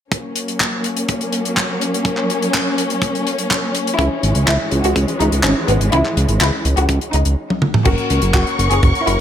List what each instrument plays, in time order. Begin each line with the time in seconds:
0.12 string section F#3 A#3 C#4, kick, closed hi-hat
0.36 closed hi-hat
0.48 closed hi-hat
0.60 kick, clap, closed hi-hat
0.84 closed hi-hat
0.97 closed hi-hat
1.08 kick, closed hi-hat
1.21 closed hi-hat
1.33 closed hi-hat
1.45 closed hi-hat
1.57 kick, clap, closed hi-hat
1.81 closed hi-hat
1.94 closed hi-hat
2.05 kick, closed hi-hat
2.17 clap
2.30 closed hi-hat
2.42 closed hi-hat
2.54 kick, clap, closed hi-hat
2.78 closed hi-hat
2.90 closed hi-hat
3.02 kick, closed hi-hat
3.15 closed hi-hat
3.27 closed hi-hat
3.38 closed hi-hat
3.50 kick, clap, closed hi-hat
3.75 closed hi-hat
3.87 closed hi-hat
3.99 analog synth bass C#2, string section E3 G#3, violin section E4, kick, closed hi-hat
4.23 analog synth bass G#1, closed hi-hat
4.35 analog synth bass C#2, closed hi-hat
4.47 analog synth bass C#2, violin section E4, kick, clap, closed hi-hat
4.71 analog synth bass C#2, closed hi-hat
4.83 analog synth bass C#2, violin section F#4, closed hi-hat
4.96 analog synth bass C#2, kick, closed hi-hat
5.08 closed hi-hat
5.20 analog synth bass C#2, violin section D#4, closed hi-hat
5.32 analog synth bass C#2, closed hi-hat
5.43 analog synth bass G#1, violin section C#4, kick, clap, closed hi-hat
5.68 analog synth bass G#1, violin section B3, closed hi-hat
5.80 analog synth bass G#1, closed hi-hat
5.92 analog synth bass C#2, violin section E4, kick, closed hi-hat
6.05 clap
6.17 analog synth bass C#2, closed hi-hat
6.29 analog synth bass G#1, closed hi-hat
6.41 analog synth bass C#2, violin section E4, kick, clap, closed hi-hat
6.65 analog synth bass C#2, closed hi-hat
6.77 analog synth bass C#2, violin section F#4, closed hi-hat
6.89 analog synth bass C#2, kick, closed hi-hat
7.01 closed hi-hat
7.13 analog synth bass C#2, violin section D#4, closed hi-hat
7.25 analog synth bass C#2, closed hi-hat
7.50 high tom
7.62 mid tom
7.74 mid tom
7.85 analog synth bass F#1, grand piano A#3 C#4 F#4 A#4, violin section F#4, string section A#4 C#5 F#5 C#6, kick, closed hi-hat, crash
7.98 closed hi-hat
8.10 analog synth bass C#2, closed hi-hat
8.22 analog synth bass F#1, closed hi-hat
8.34 analog synth bass F#1, violin section F#4, kick, clap, closed hi-hat
8.47 closed hi-hat
8.59 analog synth bass F#1, closed hi-hat
8.70 analog synth bass F#1, violin section G#4, closed hi-hat
8.83 analog synth bass F#1, kick, closed hi-hat
8.95 closed hi-hat
9.07 analog synth bass F#1, grand piano A#3 C#4 F#4 A#4, violin section E4, closed hi-hat